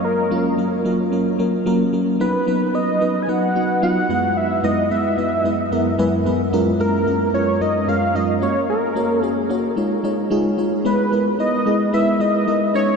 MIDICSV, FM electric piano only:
0, 0, Header, 1, 2, 480
1, 0, Start_track
1, 0, Tempo, 540541
1, 37, Time_signature, 4, 2, 24, 8
1, 11512, End_track
2, 0, Start_track
2, 0, Title_t, "FM electric piano"
2, 0, Program_c, 0, 5
2, 0, Control_c, 0, 64, 127
2, 0, Note_on_c, 0, 54, 74
2, 0, Note_on_c, 0, 58, 64
2, 0, Note_on_c, 0, 61, 67
2, 0, Note_on_c, 0, 70, 81
2, 178, Note_off_c, 0, 54, 0
2, 180, Note_off_c, 0, 58, 0
2, 182, Note_off_c, 0, 61, 0
2, 184, Note_off_c, 0, 70, 0
2, 271, Note_on_c, 0, 54, 85
2, 274, Note_on_c, 0, 58, 79
2, 278, Note_on_c, 0, 61, 81
2, 282, Note_on_c, 0, 65, 98
2, 431, Note_off_c, 0, 54, 0
2, 433, Note_off_c, 0, 58, 0
2, 435, Note_off_c, 0, 61, 0
2, 437, Note_off_c, 0, 65, 0
2, 512, Note_on_c, 0, 54, 70
2, 515, Note_on_c, 0, 58, 63
2, 519, Note_on_c, 0, 61, 65
2, 523, Note_on_c, 0, 70, 74
2, 672, Note_off_c, 0, 54, 0
2, 673, Note_off_c, 0, 58, 0
2, 675, Note_off_c, 0, 61, 0
2, 677, Note_off_c, 0, 70, 0
2, 751, Note_on_c, 0, 54, 82
2, 755, Note_on_c, 0, 58, 71
2, 757, Note_on_c, 0, 61, 74
2, 761, Note_on_c, 0, 70, 90
2, 911, Note_off_c, 0, 54, 0
2, 913, Note_off_c, 0, 58, 0
2, 915, Note_off_c, 0, 61, 0
2, 917, Note_off_c, 0, 70, 0
2, 991, Note_on_c, 0, 54, 82
2, 994, Note_on_c, 0, 58, 72
2, 998, Note_on_c, 0, 61, 73
2, 1002, Note_on_c, 0, 70, 95
2, 1151, Note_off_c, 0, 54, 0
2, 1153, Note_off_c, 0, 58, 0
2, 1155, Note_off_c, 0, 61, 0
2, 1157, Note_off_c, 0, 70, 0
2, 1230, Note_on_c, 0, 54, 83
2, 1234, Note_on_c, 0, 58, 77
2, 1238, Note_on_c, 0, 61, 80
2, 1241, Note_on_c, 0, 70, 89
2, 1391, Note_off_c, 0, 54, 0
2, 1393, Note_off_c, 0, 58, 0
2, 1395, Note_off_c, 0, 61, 0
2, 1396, Note_off_c, 0, 70, 0
2, 1471, Note_on_c, 0, 54, 96
2, 1475, Note_on_c, 0, 58, 95
2, 1478, Note_on_c, 0, 61, 88
2, 1481, Note_on_c, 0, 70, 111
2, 1632, Note_off_c, 0, 54, 0
2, 1633, Note_off_c, 0, 58, 0
2, 1635, Note_off_c, 0, 61, 0
2, 1637, Note_off_c, 0, 70, 0
2, 1712, Note_on_c, 0, 54, 81
2, 1716, Note_on_c, 0, 58, 73
2, 1719, Note_on_c, 0, 61, 72
2, 1722, Note_on_c, 0, 70, 84
2, 1872, Note_off_c, 0, 54, 0
2, 1874, Note_off_c, 0, 58, 0
2, 1875, Note_off_c, 0, 61, 0
2, 1877, Note_off_c, 0, 70, 0
2, 1951, Note_on_c, 0, 54, 86
2, 1955, Note_on_c, 0, 59, 81
2, 1958, Note_on_c, 0, 63, 80
2, 1963, Note_on_c, 0, 71, 98
2, 1969, Control_c, 0, 64, 0
2, 2112, Note_off_c, 0, 54, 0
2, 2113, Note_off_c, 0, 59, 0
2, 2115, Note_off_c, 0, 63, 0
2, 2117, Note_off_c, 0, 71, 0
2, 2144, Control_c, 0, 64, 127
2, 2191, Note_on_c, 0, 54, 84
2, 2195, Note_on_c, 0, 59, 79
2, 2198, Note_on_c, 0, 63, 78
2, 2202, Note_on_c, 0, 71, 91
2, 2351, Note_off_c, 0, 54, 0
2, 2353, Note_off_c, 0, 59, 0
2, 2355, Note_off_c, 0, 63, 0
2, 2357, Note_off_c, 0, 71, 0
2, 2431, Note_on_c, 0, 54, 65
2, 2435, Note_on_c, 0, 59, 61
2, 2438, Note_on_c, 0, 63, 59
2, 2442, Note_on_c, 0, 71, 77
2, 2592, Note_off_c, 0, 54, 0
2, 2593, Note_off_c, 0, 59, 0
2, 2595, Note_off_c, 0, 63, 0
2, 2597, Note_off_c, 0, 71, 0
2, 2670, Note_on_c, 0, 54, 68
2, 2674, Note_on_c, 0, 59, 60
2, 2677, Note_on_c, 0, 63, 61
2, 2681, Note_on_c, 0, 71, 75
2, 2831, Note_off_c, 0, 54, 0
2, 2833, Note_off_c, 0, 59, 0
2, 2835, Note_off_c, 0, 63, 0
2, 2836, Note_off_c, 0, 71, 0
2, 2912, Note_on_c, 0, 54, 72
2, 2916, Note_on_c, 0, 59, 64
2, 2919, Note_on_c, 0, 63, 66
2, 2922, Note_on_c, 0, 71, 80
2, 3072, Note_off_c, 0, 54, 0
2, 3074, Note_off_c, 0, 59, 0
2, 3076, Note_off_c, 0, 63, 0
2, 3077, Note_off_c, 0, 71, 0
2, 3152, Note_on_c, 0, 54, 72
2, 3155, Note_on_c, 0, 59, 64
2, 3159, Note_on_c, 0, 63, 69
2, 3162, Note_on_c, 0, 66, 78
2, 3312, Note_off_c, 0, 54, 0
2, 3313, Note_off_c, 0, 59, 0
2, 3315, Note_off_c, 0, 63, 0
2, 3317, Note_off_c, 0, 66, 0
2, 3391, Note_on_c, 0, 54, 84
2, 3395, Note_on_c, 0, 59, 75
2, 3398, Note_on_c, 0, 63, 78
2, 3402, Note_on_c, 0, 65, 98
2, 3551, Note_off_c, 0, 54, 0
2, 3553, Note_off_c, 0, 59, 0
2, 3555, Note_off_c, 0, 63, 0
2, 3557, Note_off_c, 0, 65, 0
2, 3632, Note_on_c, 0, 42, 72
2, 3636, Note_on_c, 0, 56, 68
2, 3638, Note_on_c, 0, 59, 65
2, 3640, Note_on_c, 0, 64, 65
2, 3644, Note_on_c, 0, 71, 77
2, 3649, Control_c, 0, 64, 0
2, 3791, Control_c, 0, 64, 127
2, 4019, Note_off_c, 0, 42, 0
2, 4020, Note_off_c, 0, 56, 0
2, 4022, Note_off_c, 0, 59, 0
2, 4023, Note_off_c, 0, 64, 0
2, 4025, Note_off_c, 0, 71, 0
2, 4112, Note_on_c, 0, 42, 85
2, 4114, Note_on_c, 0, 56, 82
2, 4117, Note_on_c, 0, 59, 78
2, 4120, Note_on_c, 0, 64, 75
2, 4122, Note_on_c, 0, 71, 100
2, 4272, Note_off_c, 0, 42, 0
2, 4273, Note_off_c, 0, 56, 0
2, 4274, Note_off_c, 0, 59, 0
2, 4276, Note_off_c, 0, 64, 0
2, 4277, Note_off_c, 0, 71, 0
2, 4352, Note_on_c, 0, 42, 67
2, 4354, Note_on_c, 0, 56, 61
2, 4357, Note_on_c, 0, 59, 65
2, 4360, Note_on_c, 0, 64, 63
2, 4362, Note_on_c, 0, 71, 72
2, 4512, Note_off_c, 0, 42, 0
2, 4513, Note_off_c, 0, 56, 0
2, 4514, Note_off_c, 0, 59, 0
2, 4516, Note_off_c, 0, 64, 0
2, 4517, Note_off_c, 0, 71, 0
2, 4593, Note_on_c, 0, 42, 67
2, 4596, Note_on_c, 0, 56, 65
2, 4598, Note_on_c, 0, 59, 64
2, 4601, Note_on_c, 0, 64, 64
2, 4604, Note_on_c, 0, 71, 77
2, 4752, Note_off_c, 0, 42, 0
2, 4754, Note_off_c, 0, 56, 0
2, 4755, Note_off_c, 0, 59, 0
2, 4757, Note_off_c, 0, 64, 0
2, 4758, Note_off_c, 0, 71, 0
2, 4833, Note_on_c, 0, 42, 67
2, 4836, Note_on_c, 0, 56, 62
2, 4839, Note_on_c, 0, 59, 63
2, 4841, Note_on_c, 0, 64, 68
2, 4844, Note_on_c, 0, 71, 81
2, 4992, Note_off_c, 0, 42, 0
2, 4994, Note_off_c, 0, 56, 0
2, 4996, Note_off_c, 0, 59, 0
2, 4997, Note_off_c, 0, 64, 0
2, 4998, Note_off_c, 0, 71, 0
2, 5074, Note_on_c, 0, 42, 88
2, 5077, Note_on_c, 0, 56, 78
2, 5079, Note_on_c, 0, 59, 82
2, 5079, Note_on_c, 0, 78, 68
2, 5082, Note_on_c, 0, 64, 79
2, 5084, Note_on_c, 0, 70, 95
2, 5233, Note_off_c, 0, 42, 0
2, 5234, Note_off_c, 0, 56, 0
2, 5235, Note_off_c, 0, 59, 0
2, 5237, Note_off_c, 0, 64, 0
2, 5238, Note_off_c, 0, 70, 0
2, 5301, Note_off_c, 0, 78, 0
2, 5312, Note_on_c, 0, 42, 105
2, 5314, Note_on_c, 0, 56, 94
2, 5316, Note_on_c, 0, 59, 93
2, 5317, Note_on_c, 0, 80, 66
2, 5320, Note_on_c, 0, 64, 100
2, 5322, Note_on_c, 0, 71, 117
2, 5472, Note_off_c, 0, 42, 0
2, 5473, Note_off_c, 0, 56, 0
2, 5474, Note_off_c, 0, 59, 0
2, 5476, Note_off_c, 0, 64, 0
2, 5477, Note_off_c, 0, 71, 0
2, 5553, Note_on_c, 0, 42, 86
2, 5556, Note_on_c, 0, 56, 73
2, 5558, Note_on_c, 0, 59, 75
2, 5561, Note_on_c, 0, 64, 76
2, 5563, Note_on_c, 0, 71, 93
2, 5712, Note_off_c, 0, 42, 0
2, 5714, Note_off_c, 0, 56, 0
2, 5715, Note_off_c, 0, 59, 0
2, 5716, Note_off_c, 0, 64, 0
2, 5718, Note_off_c, 0, 71, 0
2, 5764, Note_off_c, 0, 80, 0
2, 5794, Note_on_c, 0, 42, 105
2, 5797, Note_on_c, 0, 56, 94
2, 5800, Note_on_c, 0, 61, 98
2, 5802, Note_on_c, 0, 65, 97
2, 5804, Note_on_c, 0, 70, 116
2, 5808, Control_c, 0, 64, 0
2, 5953, Note_off_c, 0, 42, 0
2, 5954, Note_off_c, 0, 56, 0
2, 5956, Note_off_c, 0, 61, 0
2, 5957, Note_off_c, 0, 65, 0
2, 5958, Note_off_c, 0, 70, 0
2, 5959, Control_c, 0, 64, 127
2, 6034, Note_on_c, 0, 42, 87
2, 6036, Note_on_c, 0, 56, 79
2, 6039, Note_on_c, 0, 61, 79
2, 6042, Note_on_c, 0, 65, 81
2, 6044, Note_on_c, 0, 70, 96
2, 6193, Note_off_c, 0, 42, 0
2, 6194, Note_off_c, 0, 56, 0
2, 6195, Note_off_c, 0, 61, 0
2, 6197, Note_off_c, 0, 65, 0
2, 6198, Note_off_c, 0, 70, 0
2, 6271, Note_on_c, 0, 42, 69
2, 6275, Note_on_c, 0, 56, 66
2, 6278, Note_on_c, 0, 61, 62
2, 6280, Note_on_c, 0, 65, 64
2, 6283, Note_on_c, 0, 70, 77
2, 6432, Note_off_c, 0, 42, 0
2, 6433, Note_off_c, 0, 56, 0
2, 6435, Note_off_c, 0, 61, 0
2, 6436, Note_off_c, 0, 65, 0
2, 6437, Note_off_c, 0, 70, 0
2, 6513, Note_on_c, 0, 42, 70
2, 6515, Note_on_c, 0, 56, 63
2, 6517, Note_on_c, 0, 61, 62
2, 6520, Note_on_c, 0, 65, 61
2, 6523, Note_on_c, 0, 70, 74
2, 6672, Note_off_c, 0, 42, 0
2, 6673, Note_off_c, 0, 56, 0
2, 6674, Note_off_c, 0, 61, 0
2, 6676, Note_off_c, 0, 65, 0
2, 6677, Note_off_c, 0, 70, 0
2, 6755, Note_on_c, 0, 42, 68
2, 6757, Note_on_c, 0, 56, 67
2, 6759, Note_on_c, 0, 61, 67
2, 6762, Note_on_c, 0, 65, 60
2, 6765, Note_on_c, 0, 70, 76
2, 6913, Note_off_c, 0, 42, 0
2, 6914, Note_off_c, 0, 56, 0
2, 6915, Note_off_c, 0, 61, 0
2, 6917, Note_off_c, 0, 65, 0
2, 6918, Note_off_c, 0, 70, 0
2, 6994, Note_on_c, 0, 42, 73
2, 6997, Note_on_c, 0, 56, 62
2, 7000, Note_on_c, 0, 61, 65
2, 7002, Note_on_c, 0, 65, 67
2, 7006, Note_on_c, 0, 70, 84
2, 7153, Note_off_c, 0, 42, 0
2, 7155, Note_off_c, 0, 56, 0
2, 7156, Note_off_c, 0, 61, 0
2, 7157, Note_off_c, 0, 65, 0
2, 7159, Note_off_c, 0, 70, 0
2, 7234, Note_on_c, 0, 42, 86
2, 7238, Note_on_c, 0, 56, 78
2, 7240, Note_on_c, 0, 61, 80
2, 7243, Note_on_c, 0, 65, 80
2, 7245, Note_on_c, 0, 70, 89
2, 7393, Note_off_c, 0, 42, 0
2, 7395, Note_off_c, 0, 56, 0
2, 7396, Note_off_c, 0, 61, 0
2, 7397, Note_off_c, 0, 65, 0
2, 7398, Note_off_c, 0, 70, 0
2, 7473, Note_on_c, 0, 58, 73
2, 7477, Note_on_c, 0, 61, 68
2, 7480, Note_on_c, 0, 66, 65
2, 7483, Note_on_c, 0, 73, 79
2, 7490, Control_c, 0, 64, 0
2, 7634, Control_c, 0, 64, 127
2, 7859, Note_off_c, 0, 58, 0
2, 7861, Note_off_c, 0, 61, 0
2, 7863, Note_off_c, 0, 66, 0
2, 7864, Note_off_c, 0, 73, 0
2, 7952, Note_on_c, 0, 58, 85
2, 7956, Note_on_c, 0, 61, 82
2, 7959, Note_on_c, 0, 66, 78
2, 7963, Note_on_c, 0, 73, 98
2, 8112, Note_off_c, 0, 58, 0
2, 8114, Note_off_c, 0, 61, 0
2, 8116, Note_off_c, 0, 66, 0
2, 8117, Note_off_c, 0, 73, 0
2, 8191, Note_on_c, 0, 58, 64
2, 8195, Note_on_c, 0, 61, 62
2, 8199, Note_on_c, 0, 66, 63
2, 8202, Note_on_c, 0, 73, 80
2, 8352, Note_off_c, 0, 58, 0
2, 8353, Note_off_c, 0, 61, 0
2, 8356, Note_off_c, 0, 66, 0
2, 8357, Note_off_c, 0, 73, 0
2, 8431, Note_on_c, 0, 58, 81
2, 8435, Note_on_c, 0, 61, 72
2, 8439, Note_on_c, 0, 66, 76
2, 8442, Note_on_c, 0, 73, 88
2, 8592, Note_off_c, 0, 58, 0
2, 8593, Note_off_c, 0, 61, 0
2, 8595, Note_off_c, 0, 66, 0
2, 8597, Note_off_c, 0, 73, 0
2, 8671, Note_on_c, 0, 56, 81
2, 8674, Note_on_c, 0, 63, 71
2, 8678, Note_on_c, 0, 65, 78
2, 8682, Note_on_c, 0, 73, 87
2, 8691, Control_c, 0, 64, 0
2, 8831, Note_off_c, 0, 56, 0
2, 8832, Control_c, 0, 64, 127
2, 8833, Note_off_c, 0, 63, 0
2, 8835, Note_off_c, 0, 65, 0
2, 8837, Note_off_c, 0, 73, 0
2, 8912, Note_on_c, 0, 56, 81
2, 8916, Note_on_c, 0, 63, 76
2, 8920, Note_on_c, 0, 65, 80
2, 8923, Note_on_c, 0, 73, 97
2, 9072, Note_off_c, 0, 56, 0
2, 9074, Note_off_c, 0, 63, 0
2, 9076, Note_off_c, 0, 65, 0
2, 9077, Note_off_c, 0, 73, 0
2, 9150, Note_on_c, 0, 56, 98
2, 9154, Note_on_c, 0, 63, 93
2, 9157, Note_on_c, 0, 65, 91
2, 9161, Note_on_c, 0, 68, 109
2, 9311, Note_off_c, 0, 56, 0
2, 9313, Note_off_c, 0, 63, 0
2, 9314, Note_off_c, 0, 65, 0
2, 9316, Note_off_c, 0, 68, 0
2, 9393, Note_on_c, 0, 56, 76
2, 9396, Note_on_c, 0, 63, 73
2, 9399, Note_on_c, 0, 65, 76
2, 9403, Note_on_c, 0, 73, 90
2, 9552, Note_off_c, 0, 56, 0
2, 9554, Note_off_c, 0, 63, 0
2, 9555, Note_off_c, 0, 65, 0
2, 9557, Note_off_c, 0, 73, 0
2, 9632, Note_on_c, 0, 56, 89
2, 9635, Note_on_c, 0, 59, 85
2, 9639, Note_on_c, 0, 64, 81
2, 9642, Note_on_c, 0, 71, 96
2, 9648, Control_c, 0, 64, 0
2, 9792, Note_off_c, 0, 56, 0
2, 9793, Note_off_c, 0, 59, 0
2, 9795, Note_off_c, 0, 64, 0
2, 9797, Note_off_c, 0, 71, 0
2, 9815, Control_c, 0, 64, 127
2, 9872, Note_on_c, 0, 56, 70
2, 9875, Note_on_c, 0, 59, 63
2, 9880, Note_on_c, 0, 64, 65
2, 9882, Note_on_c, 0, 70, 75
2, 10032, Note_off_c, 0, 56, 0
2, 10034, Note_off_c, 0, 59, 0
2, 10036, Note_off_c, 0, 64, 0
2, 10037, Note_off_c, 0, 70, 0
2, 10111, Note_on_c, 0, 56, 69
2, 10115, Note_on_c, 0, 59, 63
2, 10119, Note_on_c, 0, 64, 64
2, 10123, Note_on_c, 0, 71, 79
2, 10271, Note_off_c, 0, 56, 0
2, 10274, Note_off_c, 0, 59, 0
2, 10275, Note_off_c, 0, 64, 0
2, 10277, Note_off_c, 0, 71, 0
2, 10352, Note_on_c, 0, 56, 73
2, 10355, Note_on_c, 0, 59, 64
2, 10358, Note_on_c, 0, 64, 62
2, 10362, Note_on_c, 0, 68, 73
2, 10512, Note_off_c, 0, 56, 0
2, 10514, Note_off_c, 0, 59, 0
2, 10515, Note_off_c, 0, 64, 0
2, 10517, Note_off_c, 0, 68, 0
2, 10591, Note_on_c, 0, 56, 90
2, 10594, Note_on_c, 0, 59, 81
2, 10599, Note_on_c, 0, 64, 81
2, 10602, Note_on_c, 0, 71, 97
2, 10751, Note_off_c, 0, 56, 0
2, 10753, Note_off_c, 0, 59, 0
2, 10755, Note_off_c, 0, 64, 0
2, 10757, Note_off_c, 0, 71, 0
2, 10831, Note_on_c, 0, 56, 73
2, 10836, Note_on_c, 0, 59, 67
2, 10839, Note_on_c, 0, 64, 67
2, 10842, Note_on_c, 0, 71, 84
2, 10992, Note_off_c, 0, 56, 0
2, 10994, Note_off_c, 0, 59, 0
2, 10995, Note_off_c, 0, 64, 0
2, 10997, Note_off_c, 0, 71, 0
2, 11073, Note_on_c, 0, 56, 66
2, 11076, Note_on_c, 0, 59, 62
2, 11079, Note_on_c, 0, 64, 62
2, 11083, Note_on_c, 0, 70, 75
2, 11232, Note_off_c, 0, 56, 0
2, 11234, Note_off_c, 0, 59, 0
2, 11235, Note_off_c, 0, 64, 0
2, 11237, Note_off_c, 0, 70, 0
2, 11312, Note_on_c, 0, 56, 70
2, 11316, Note_on_c, 0, 61, 67
2, 11320, Note_on_c, 0, 63, 65
2, 11323, Note_on_c, 0, 73, 83
2, 11329, Control_c, 0, 64, 0
2, 11500, Control_c, 0, 64, 127
2, 11512, Note_off_c, 0, 56, 0
2, 11512, Note_off_c, 0, 61, 0
2, 11512, Note_off_c, 0, 63, 0
2, 11512, Note_off_c, 0, 73, 0
2, 11512, End_track
0, 0, End_of_file